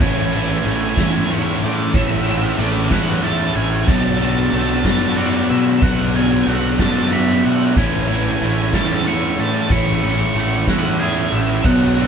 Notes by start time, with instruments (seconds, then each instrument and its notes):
Already playing: clean electric guitar A3
0.00 fingered electric bass A1, distorted electric guitar A2 E3 A3 C#4 E4 A4, vibraphone C#5, lead electric guitar G#5, kick, crash
0.09 lead electric guitar G#5
0.17 lead electric guitar G#5
0.25 lead electric guitar G#5
0.32 distorted electric guitar A2 E3 A3 C#4 E4 A4, vibraphone B4, lead electric guitar G#5, ride
0.41 lead electric guitar G#5
0.50 lead electric guitar G#5
0.58 lead electric guitar G#5
0.64 fingered electric bass A1, distorted electric guitar A2 E3 A3 C#4 E4 A4, vibraphone A4, lead electric guitar G#5, ride
0.73 lead electric guitar G#5
0.81 lead electric guitar G#5
0.89 lead electric guitar G#5
0.96 fingered electric bass E2, distorted electric guitar A2 E3 A3 C#4 E4 A4, lead electric guitar G#5, kick, snare, ride
1.29 distorted electric guitar A2 E3 A3 C#4 E4 A4, lead electric guitar C#5, ride
1.61 fingered electric bass A2, clean electric guitar A3, lead electric guitar D5, ride
1.94 fingered electric bass A1, distorted electric guitar A2 E3 A3 C#4 E4 A4, vibraphone C#5, lead electric guitar E5, kick, ride
2.26 distorted electric guitar A2 E3 A3 C#4 E4 A4, lead electric guitar E5, ride
2.58 fingered electric bass A1, distorted electric guitar A2 E3 A3 C#4 E4 A4, vibraphone A4, lead electric guitar D5, ride
2.90 fingered electric bass E2, distorted electric guitar A2 E3 A3 C#4 E4 A4, lead electric guitar F#5, kick, snare, ride
3.23 distorted electric guitar A2 E3 A3 C#4 E4 A4, vibraphone E5, lead electric guitar A5, ride
3.56 fingered electric bass A1, clean electric guitar A3, lead electric guitar G#5, ride
3.87 fingered electric bass B1, distorted electric guitar B2 F#3 B3 D4 F#4, vibraphone C#5, lead electric guitar A5, kick, ride
3.95 lead electric guitar A5
4.03 lead electric guitar A5
4.10 lead electric guitar A5
4.18 distorted electric guitar B2 F#3 B3 D4 F#4, vibraphone B4, lead electric guitar A5, ride
4.25 lead electric guitar A5
4.31 lead electric guitar A5
4.40 lead electric guitar A5
4.47 lead electric guitar A5
4.52 fingered electric bass B1, distorted electric guitar B2 F#3 B3 D4 F#4, clean electric guitar A3, vibraphone A4, lead electric guitar A5, ride
4.62 lead electric guitar A5
4.70 lead electric guitar A5
4.77 lead electric guitar A5
4.84 fingered electric bass F#2, distorted electric guitar B2 F#3 B3 D4 F#4, lead electric guitar A5, kick, snare, ride
5.16 distorted electric guitar B2 F#3 B3 D4 F#4, lead electric guitar D5, ride
5.49 fingered electric bass B2, clean electric guitar A3, lead electric guitar E5, ride
5.81 fingered electric bass B1, distorted electric guitar B2 F#3 B3 D4 F#4, vibraphone B4, lead electric guitar F#5, kick, ride
6.14 distorted electric guitar B2 F#3 B3 D4 F#4, lead electric guitar G#5, ride
6.46 fingered electric bass B1, distorted electric guitar B2 F#3 B3 D4 F#4, clean electric guitar A3, vibraphone A4, lead electric guitar F#5, ride
6.79 fingered electric bass F#2, distorted electric guitar B2 F#3 B3 D4 F#4, lead electric guitar A5, kick, snare, ride
7.11 distorted electric guitar B2 F#3 B3 D4 F#4, vibraphone E5, lead electric guitar B5, ride
7.44 fingered electric bass B2, clean electric guitar A3, lead electric guitar F#5, ride
7.76 fingered electric bass A1, distorted electric guitar A2 E3 A3 C#4 E4, vibraphone C#5, lead electric guitar G#5, kick, crash
7.85 lead electric guitar G#5
7.93 lead electric guitar G#5
8.01 lead electric guitar G#5
8.07 distorted electric guitar A2 E3 A3 C#4 E4, vibraphone B4, lead electric guitar G#5, ride
8.16 lead electric guitar G#5
8.23 lead electric guitar G#5
8.32 lead electric guitar G#5
8.39 fingered electric bass A1, distorted electric guitar A2 E3 A3 C#4 E4, vibraphone A4, lead electric guitar G#5, ride
8.46 lead electric guitar G#5
8.53 lead electric guitar G#5
8.62 lead electric guitar G#5
8.69 distorted electric guitar A2, lead electric guitar G#5
8.73 fingered electric bass E2, distorted electric guitar E3 A3 C#4 E4, lead electric guitar A5, kick, snare, ride
9.05 distorted electric guitar A2 E3 A3 C#4 E4, lead electric guitar C#6, ride
9.38 fingered electric bass A2, clean electric guitar A3, lead electric guitar A5, ride
9.70 fingered electric bass A1, distorted electric guitar A2 E3 A3 C#4 E4, vibraphone C#5, lead electric guitar C#6, kick, ride
9.79 lead electric guitar C#6
9.86 lead electric guitar C#6
9.95 lead electric guitar C#6
10.02 distorted electric guitar A2 E3 A3 C#4 E4, lead electric guitar C#6, ride
10.11 lead electric guitar C#6
10.19 lead electric guitar C#6
10.26 lead electric guitar C#6
10.34 fingered electric bass A1, distorted electric guitar A2 E3 A3 C#4 E4, lead electric guitar C#6, ride
10.41 lead electric guitar C#6
10.48 lead electric guitar C#6
10.56 lead electric guitar C#6
10.67 fingered electric bass E2, distorted electric guitar A2 E3 A3 C#4 E4, lead electric guitar F#5, kick, snare, ride
10.99 distorted electric guitar A2 E3 A3 C#4 E4, clean electric guitar G#4, vibraphone E5, lead electric guitar G#5, ride
11.32 fingered electric bass A1, clean electric guitar A3, lead electric guitar E5, ride
11.64 fingered electric bass B1, distorted electric guitar B2 F#3 B3 D4 F#4, vibraphone C#5, lead electric guitar F#5, kick, ride
11.72 lead electric guitar F#5
11.80 lead electric guitar F#5
11.87 lead electric guitar F#5
11.95 distorted electric guitar B2 F#3 B3 D4 F#4, vibraphone B4, lead electric guitar F#5, ride
12.03 lead electric guitar F#5